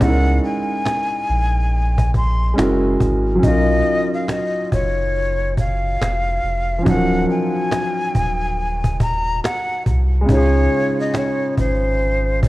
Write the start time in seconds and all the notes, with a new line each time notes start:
Already playing: G#3 C#4
0.01 C#2 D#4 F#5, cajon bass
0.05 E4 A#4
0.28 cajon slap
0.44 G#5, cajon slap
0.69 cajon slap
0.85 cajon slap
1.30 A#1, cajon slap
1.57 cajon slap
1.74 cajon slap
1.98 cajon bass
2.14 C6, cajon bass
2.43 cajon slap
2.54 G#3 C#4 E4
2.58 F#1 F#4 A#4, cajon slap
3.00 G#1, cajon bass
3.29 cajon slap
3.36 F#3 C#4
3.43 B1 D#4 D#5, cajon bass
3.47 F4 A#4
3.71 cajon slap
3.87 cajon slap
4.12 F5, cajon slap
4.28 D#5, cajon slap
4.72 F#1 C#5, cajon bass
4.99 cajon slap
5.17 cajon slap
5.57 F5, cajon bass
5.86 cajon slap
6.01 F1, cajon slap
6.44 F1, cajon slap
6.73 cajon slap
6.79 F3 C#4
6.85 D#1 F#3 D#4 F#5, cajon bass
6.90 F3 A#4
7.30 G#5, cajon slap
7.55 cajon slap
7.71 cajon slap
8.01 cajon slap
8.15 D#1, cajon bass
8.42 cajon slap
8.57 cajon slap
8.60 cajon slap
8.84 cajon bass
9.00 A#5, cajon bass
9.29 cajon slap
9.44 F#5, cajon slap
9.70 cajon slap
9.86 C2, cajon bass
10.15 cajon slap
10.21 G#3
10.25 C#3 D#4, cajon bass
10.29 C#2 F4 C#5
10.37 G#4
10.73 cajon slap
10.98 D#5, cajon slap
11.14 C#5, cajon slap
11.58 G#1 C5, cajon bass
11.85 cajon slap
12.03 cajon slap
12.43 D5, cajon bass